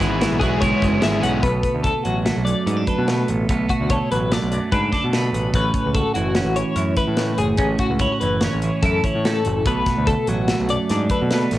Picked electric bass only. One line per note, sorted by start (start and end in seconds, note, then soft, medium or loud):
0.00 0.25 G#1 medium
0.31 0.72 B1 medium
0.83 1.01 F#1 medium
1.03 1.21 G#1 medium
1.23 1.42 B1 medium
1.44 1.60 B1 medium
1.75 1.91 D2 medium
2.05 2.30 A1 medium
2.37 2.53 B1 medium
2.67 2.83 G#2 medium
2.98 3.23 B2 medium
3.29 3.45 A1 medium
3.50 3.66 B1 medium
3.81 3.97 D2 medium
4.12 4.36 A1 medium
4.42 4.58 B1 medium
4.72 4.89 G#2 medium
5.04 5.28 B2 medium
5.33 5.50 A1 medium
5.54 5.70 A1 medium
5.86 6.02 C#2 medium
6.16 6.41 F#1 medium
6.45 6.62 A1 medium
6.76 6.93 F#2 medium
7.08 7.33 A2 medium
7.38 7.55 F#1 medium
7.58 7.75 A1 medium
7.90 8.07 C#2 medium
8.22 8.47 F#1 medium
8.53 8.69 A1 medium
8.83 8.99 F#2 medium
9.15 9.40 A2 medium
9.46 9.62 F#1 medium
9.66 9.82 B1 medium
9.97 10.13 D2 medium
10.28 10.52 A1 medium
10.60 10.76 B1 medium
10.90 11.06 G#2 medium
11.22 11.46 B2 medium
11.52 11.58 A1 medium